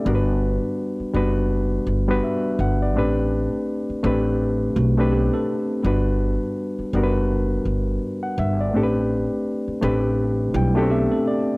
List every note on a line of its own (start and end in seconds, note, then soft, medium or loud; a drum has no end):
0.05 0.57 G1 loud
0.05 1.01 G3 medium
0.05 1.02 B3 medium
0.05 1.02 D4 medium
0.05 1.03 F#4 medium
0.05 0.15 A#4 medium
0.15 1.06 B4 medium
1.00 muted upright bass stroke soft
1.13 1.79 F#1 medium
1.13 1.92 G3 medium
1.13 1.93 B3 medium
1.13 1.93 D4 medium
1.13 1.93 F#4 medium
1.13 1.94 B4 medium
1.87 2.19 G1 medium
2.08 2.84 G3 medium
2.08 2.85 B3 medium
2.08 2.85 D4 medium
2.08 2.86 F#4 medium
2.08 2.86 B4 loud
2.24 2.58 E5 medium
2.59 2.95 G1 medium
2.59 2.80 F#5 medium
2.82 3.16 D5 medium
2.95 3.46 A1 loud
2.95 3.91 A3 medium
2.95 3.91 C4 medium
2.95 3.92 D4 medium
2.95 3.92 G4 medium
2.95 3.93 B4 medium
3.90 muted upright bass stroke soft
4.03 4.68 A1 loud
4.03 4.82 A3 medium
4.03 4.82 C4 medium
4.03 4.83 D4 medium
4.03 4.83 G4 medium
4.03 4.83 B4 medium
4.76 5.27 B1 medium
4.76 5.10 A3 medium
4.76 5.10 F#4 medium
4.97 5.74 A3 medium
4.97 5.74 C4 medium
4.97 5.74 D4 medium
4.97 5.75 G4 medium
4.97 5.75 B4 medium
5.12 5.33 B3 medium
5.12 5.32 G4 medium
5.34 5.82 C4 medium
5.34 5.82 A4 medium
5.83 6.36 G1 medium
5.83 6.80 G3 medium
5.83 6.80 B3 medium
5.83 6.80 D4 medium
5.83 6.81 F#4 medium
5.83 6.81 B4 medium
6.79 muted upright bass stroke soft
6.93 7.57 F#1 medium
6.93 7.72 G3 medium
6.93 7.72 B3 medium
6.93 7.72 D4 medium
6.93 7.73 F#4 medium
6.93 7.02 A#4 medium
7.03 7.76 B4 medium
7.65 7.97 G1 medium
8.23 8.37 F#5 medium
8.38 8.73 G1 medium
8.38 8.59 E5 medium
8.61 8.94 D5 medium
8.73 9.25 A1 loud
8.73 9.69 A3 medium
8.73 9.70 C4 medium
8.73 9.70 D4 medium
8.73 9.71 G4 medium
8.73 8.83 A4 medium
8.83 9.74 B4 medium
9.68 muted upright bass stroke soft
9.81 10.46 A1 loud
9.81 10.60 A3 medium
9.81 10.60 C4 medium
9.81 10.61 D4 medium
9.81 10.61 G4 medium
9.81 10.61 B4 medium
10.54 11.05 B1 loud
10.54 10.75 G3 medium
10.54 10.75 E4 medium
10.54 10.89 G5 medium
10.75 11.52 A3 medium
10.75 10.90 A3 medium
10.75 10.81 B3 medium
10.75 11.53 D4 medium
10.75 10.89 F#4 medium
10.75 11.53 G4 medium
10.75 11.53 A4 medium
10.82 11.55 C4 medium
10.90 11.11 B3 medium
10.90 11.11 G4 medium
10.90 11.24 E5 medium
11.11 11.57 C4 medium
11.11 11.57 A4 medium
11.28 11.57 D5 medium